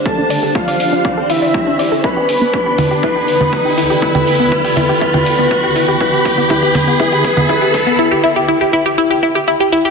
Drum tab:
HH |--o--oo---o---o-|--o---o---o---o-|--o--oo---o---o-|--o---o---o---o-|
CG |----------------|------O----O----|-O----O--O------|------O----O----|
BD |o---o---o---o---|o---o---o---o---|o---o---o---o---|o-o-o-o-o-o-o-o-|

HH |----------------|
CG |----------------|
BD |----------------|